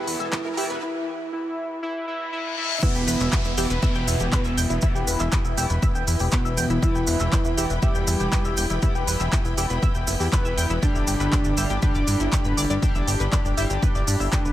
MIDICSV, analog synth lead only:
0, 0, Header, 1, 2, 480
1, 0, Start_track
1, 0, Key_signature, 1, "minor"
1, 0, Tempo, 500000
1, 792, Time_signature, 4, 2, 24, 8
1, 13946, End_track
2, 0, Start_track
2, 0, Title_t, "Analog synth lead"
2, 0, Program_c, 0, 81
2, 0, Note_on_c, 0, 64, 99
2, 697, Note_off_c, 0, 64, 0
2, 793, Note_on_c, 0, 64, 103
2, 1253, Note_off_c, 0, 64, 0
2, 1273, Note_on_c, 0, 64, 102
2, 1733, Note_off_c, 0, 64, 0
2, 1752, Note_on_c, 0, 64, 109
2, 1973, Note_off_c, 0, 64, 0
2, 1991, Note_on_c, 0, 64, 103
2, 2212, Note_off_c, 0, 64, 0
2, 2231, Note_on_c, 0, 64, 108
2, 2452, Note_off_c, 0, 64, 0
2, 2472, Note_on_c, 0, 64, 113
2, 2693, Note_off_c, 0, 64, 0
2, 2713, Note_on_c, 0, 59, 106
2, 3577, Note_off_c, 0, 59, 0
2, 3672, Note_on_c, 0, 59, 109
2, 5017, Note_off_c, 0, 59, 0
2, 6072, Note_on_c, 0, 59, 98
2, 6514, Note_off_c, 0, 59, 0
2, 6553, Note_on_c, 0, 64, 114
2, 7417, Note_off_c, 0, 64, 0
2, 7512, Note_on_c, 0, 67, 111
2, 8856, Note_off_c, 0, 67, 0
2, 9912, Note_on_c, 0, 71, 95
2, 10354, Note_off_c, 0, 71, 0
2, 10393, Note_on_c, 0, 62, 107
2, 11257, Note_off_c, 0, 62, 0
2, 11353, Note_on_c, 0, 62, 109
2, 12697, Note_off_c, 0, 62, 0
2, 13752, Note_on_c, 0, 62, 96
2, 13946, Note_off_c, 0, 62, 0
2, 13946, End_track
0, 0, End_of_file